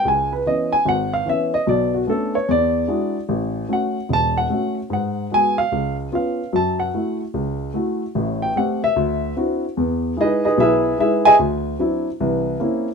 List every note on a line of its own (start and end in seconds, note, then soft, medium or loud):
0.05 0.40 C#2 medium
0.05 0.32 G#5 medium
0.33 0.46 B4 medium
0.46 0.73 E3 medium
0.46 0.73 B3 soft
0.46 0.74 C#4 medium
0.46 0.71 D#5 medium
0.72 0.86 G#5 loud
0.85 1.21 G#1 medium
0.85 1.12 F#5 loud
1.13 1.27 F5 medium
1.26 1.53 E3 medium
1.26 1.54 B3 soft
1.26 1.54 C#4 medium
1.26 1.53 E5 medium
1.54 1.67 D#5 medium
1.67 2.02 B1 medium
1.67 2.02 B2 medium
1.67 1.93 D5 medium
1.94 2.08 F#4 medium
2.07 2.34 A3 medium
2.07 2.35 B3 soft
2.07 2.35 C#4 soft
2.07 2.35 D4 medium
2.07 2.34 A4 medium
2.35 2.48 C#5 medium
2.48 2.83 E2 medium
2.48 3.19 D5 medium
2.88 3.15 G#3 medium
2.88 3.16 D4 medium
2.88 3.16 E4 soft
2.88 3.16 F#4 medium
3.29 3.64 A1 medium
3.69 3.96 A3 medium
3.69 3.97 C#4 soft
3.69 3.97 F#4 medium
3.73 4.09 F#5 medium
4.09 4.44 E1 medium
4.13 4.37 A5 loud
4.38 4.74 F#5 loud
4.50 4.77 A3 medium
4.50 4.77 C#4 soft
4.50 4.78 F#4 medium
4.90 5.25 G#2 medium
4.90 5.30 F#5 medium
5.31 5.59 G#3 medium
5.31 5.59 B3 soft
5.31 5.59 F#4 medium
5.31 5.58 G#5 loud
5.58 5.95 F5 loud
5.72 6.07 C#2 medium
6.12 6.39 B3 medium
6.12 6.40 C#4 medium
6.12 6.40 F4 medium
6.12 6.52 F5 medium
6.53 6.88 F#2 medium
6.53 6.88 F#3 medium
6.53 6.80 A5 medium
6.80 7.17 F#5 medium
6.94 7.21 A3 medium
6.94 7.21 E4 soft
6.94 7.21 F#4 medium
7.34 7.69 C#2 medium
7.74 8.01 A3 medium
7.74 8.02 E4 soft
7.74 8.02 F#4 medium
8.15 8.50 A1 medium
8.15 8.50 A2 medium
8.42 8.56 G5 medium
8.56 8.83 A3 medium
8.56 8.84 C4 soft
8.56 8.84 G4 medium
8.56 8.82 F#5 medium
8.84 9.34 E5 loud
8.96 9.31 D2 medium
9.37 9.64 C4 medium
9.37 9.64 D4 medium
9.37 9.64 E4 medium
9.37 9.64 F#4 medium
9.77 10.12 E2 medium
10.17 10.44 G#3 medium
10.17 10.20 D#4 medium
10.17 10.45 E4 medium
10.17 10.44 G#4 medium
10.21 10.44 D#4 medium
10.21 10.44 B4 medium
10.21 10.43 D#5 medium
10.45 10.59 D#4 medium
10.45 10.59 G#4 medium
10.45 10.58 B4 medium
10.45 10.58 D#5 medium
10.58 10.93 B1 medium
10.58 10.97 E4 medium
10.58 10.97 G#4 medium
10.58 10.97 B4 medium
10.58 10.97 E5 loud
10.98 11.26 G#3 medium
10.98 11.26 D#4 medium
10.98 11.26 E4 medium
10.98 11.25 G#4 medium
10.98 11.25 B4 medium
10.98 11.24 E5 medium
11.25 11.34 G#4 medium
11.25 11.34 D#5 medium
11.25 11.34 E5 medium
11.25 11.34 G#5 loud
11.39 11.74 D2 medium
11.79 12.07 F#3 medium
11.79 12.07 C4 medium
11.79 12.07 D4 medium
11.79 12.07 E4 medium
12.20 12.55 C2 medium
12.20 12.55 E3 medium
12.60 12.87 A#3 medium
12.60 12.87 C4 medium
12.60 12.88 C#4 medium
12.60 12.88 E4 medium